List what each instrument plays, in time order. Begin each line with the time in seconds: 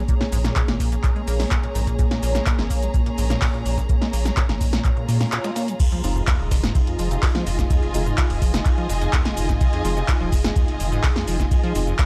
Already playing: analog synth pad A#3 G#4 C#5, string section G#4 C#5 A#5
0.09 acid bass A#2, kick, closed hi-hat, shaker
0.21 acid bass A#2, snare, closed hi-hat
0.32 sub bass A#1, acid bass G#2, open hi-hat, shaker
0.44 acid bass A#2, snare, closed hi-hat, shaker
0.56 acid bass A#2, kick, snare, clap, closed hi-hat, shaker
0.68 sub bass G#1, acid bass A#2, snare, closed hi-hat
0.80 sub bass A#1, acid bass A#2, kick, open hi-hat, shaker
0.92 acid bass A#2, closed hi-hat, shaker
1.03 acid bass A#2, kick, clap, closed hi-hat, shaker
1.16 acid bass G#3, closed hi-hat
1.28 sub bass A#1, acid bass A#3, snare, open hi-hat, shaker
1.40 acid bass F3, snare, closed hi-hat, open hi-hat, shaker
1.51 acid bass A#2, kick, snare, clap, closed hi-hat, shaker
1.63 acid bass A#2, closed hi-hat
1.75 sub bass A#1, acid bass G#2, open hi-hat, shaker
1.87 acid bass A#2, kick, closed hi-hat, shaker
1.99 acid bass A#2, kick, closed hi-hat, shaker
2.11 acid bass A#2, snare, closed hi-hat
2.23 sub bass A#1, acid bass A#2, open hi-hat, shaker
2.35 acid bass A#2, snare, closed hi-hat, shaker
2.46 acid bass A#2, kick, snare, clap, closed hi-hat, shaker
2.59 sub bass G#1, acid bass G#3, snare, closed hi-hat
2.70 sub bass A#1, acid bass A#3, kick, open hi-hat, shaker
2.82 acid bass F3, closed hi-hat, shaker
2.94 acid bass A#2, kick, closed hi-hat, shaker
3.06 acid bass A#2, closed hi-hat
3.18 sub bass A#1, acid bass G#2, open hi-hat, shaker
3.30 acid bass A#2, snare, shaker
3.42 acid bass A#2, kick, snare, clap, closed hi-hat, open hi-hat, shaker
3.54 acid bass A#2, snare, closed hi-hat
3.66 sub bass A#1, acid bass A#2, open hi-hat, shaker
3.78 acid bass A#2, kick, snare, closed hi-hat, shaker
3.89 acid bass A#2, kick, closed hi-hat, shaker
4.01 acid bass G#3, snare, closed hi-hat
4.13 sub bass A#1, acid bass A#3, open hi-hat, shaker
4.25 acid bass F3, snare, shaker
4.37 acid bass A#2, kick, snare, clap, closed hi-hat, shaker
4.49 sub bass G#1, acid bass A#2, snare, closed hi-hat
4.61 sub bass A#1, acid bass G#2, kick, open hi-hat, shaker
4.73 acid bass A#2, snare, closed hi-hat, shaker
4.84 acid bass A#2, kick, clap, closed hi-hat, swell, shaker
4.97 acid bass A#2, closed hi-hat
5.08 acid bass A#2, sub bass A#2, snare, open hi-hat, shaker
5.21 acid bass A#2, snare, open hi-hat, shaker
5.32 acid bass A#2, snare, clap, closed hi-hat, shaker
5.44 acid bass G#3, snare, closed hi-hat, shaker
5.56 acid bass A#3, snare, open hi-hat, shaker
5.68 acid bass F3, closed hi-hat, shaker
5.80 acid bass F2, analog synth pad D#4 F4 G#4, string section F4, kick, closed hi-hat, crash, ride, sub drop, shaker
5.92 acid bass F3, closed hi-hat
6.04 sub bass F1, acid bass F2, synth stab G#3 C4 D#4 F4, open hi-hat, shaker
6.16 acid bass F2, closed hi-hat, shaker
6.20 string section D#5
6.27 acid bass D#2, kick, snare, clap, closed hi-hat, ride, shaker
6.40 sub bass D#1, acid bass F1, snare
6.51 sub bass F1, acid bass F3, kick, snare, open hi-hat, shaker
6.63 acid bass G#2, snare, closed hi-hat, shaker
6.75 acid bass C3, kick, closed hi-hat, ride, shaker
6.84 acid bass F2, string section G#5, closed hi-hat
6.99 sub bass F1, acid bass F3, open hi-hat, shaker
7.11 acid bass C3, closed hi-hat, shaker
7.22 acid bass F2, kick, snare, clap, closed hi-hat, open hi-hat, ride, shaker
7.35 acid bass F3, snare, closed hi-hat
7.47 sub bass F1, acid bass F2, open hi-hat, shaker
7.59 acid bass F2, kick, snare, closed hi-hat, shaker
7.70 acid bass D#2, kick, closed hi-hat, ride, shaker
7.83 acid bass F1, closed hi-hat
7.94 sub bass F1, acid bass F3, synth stab G#3 C4 D#4 F4, open hi-hat, shaker
8.06 acid bass G#2, closed hi-hat, shaker
8.18 acid bass C3, kick, snare, clap, closed hi-hat, ride, shaker
8.30 sub bass D#1, acid bass F2, closed hi-hat, open hi-hat
8.42 sub bass F1, acid bass F3, kick, open hi-hat, shaker
8.54 acid bass C3, snare, closed hi-hat, shaker
8.65 acid bass F2, kick, clap, closed hi-hat, ride, shaker
8.78 acid bass F3, closed hi-hat
8.89 sub bass F1, acid bass F2, snare, open hi-hat, shaker
9.01 acid bass F2, closed hi-hat, shaker
9.13 acid bass D#2, kick, snare, clap, closed hi-hat, ride, shaker
9.25 acid bass F1, snare, closed hi-hat
9.37 sub bass F1, acid bass F3, open hi-hat, shaker
9.49 acid bass G#2, kick, snare, closed hi-hat, shaker
9.61 acid bass C3, kick, closed hi-hat, ride, shaker
9.73 acid bass F2, closed hi-hat
9.85 sub bass F1, acid bass F3, synth stab G#3 C4 D#4 F4, open hi-hat, shaker
9.97 acid bass C3, closed hi-hat, shaker
10.08 acid bass F2, kick, snare, clap, closed hi-hat, ride, shaker
10.21 sub bass D#1, acid bass F3, snare
10.32 sub bass F1, acid bass F2, kick, open hi-hat, shaker
10.44 acid bass F2, snare, closed hi-hat, shaker
10.56 acid bass D#2, kick, closed hi-hat, ride, shaker
10.68 acid bass F1, closed hi-hat
10.80 sub bass F1, acid bass F3, open hi-hat, shaker
10.92 acid bass G#2, snare, closed hi-hat, shaker
11.03 kick, snare, clap, closed hi-hat, open hi-hat, ride, shaker
11.16 acid bass F2, snare, closed hi-hat
11.28 sub bass F1, acid bass F3, open hi-hat, shaker
11.40 acid bass C3, kick, snare, closed hi-hat, shaker
11.51 acid bass F2, kick, closed hi-hat, ride, shaker
11.63 acid bass F3, closed hi-hat
11.75 sub bass F1, acid bass F2, synth stab G#3 C4 D#4 F4, open hi-hat, shaker
11.87 acid bass F2, closed hi-hat, shaker
11.99 acid bass D#2, kick, snare, clap, closed hi-hat, ride, shaker